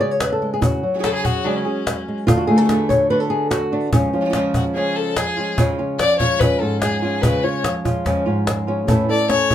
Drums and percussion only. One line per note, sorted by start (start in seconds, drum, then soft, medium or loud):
0.20 cajon slap loud
0.42 cajon slap soft
0.62 cajon bass loud
1.04 cajon slap medium
1.25 cajon bass medium
1.87 cajon slap loud
2.28 cajon bass loud
2.69 cajon slap medium
2.90 cajon bass medium
3.51 cajon slap loud
3.93 cajon bass loud
4.13 cajon slap soft
4.33 cajon slap loud
4.54 cajon bass medium
5.17 cajon slap loud
5.58 cajon bass medium
5.99 cajon slap loud
6.20 cajon bass medium
6.41 cajon bass loud
6.82 cajon slap loud
7.02 cajon slap soft
7.23 cajon bass loud
7.64 cajon slap medium
7.85 cajon bass medium
8.06 cajon bass medium
8.06 cajon slap soft
8.47 cajon slap loud
8.88 cajon bass loud
9.30 cajon slap medium
9.51 cajon bass medium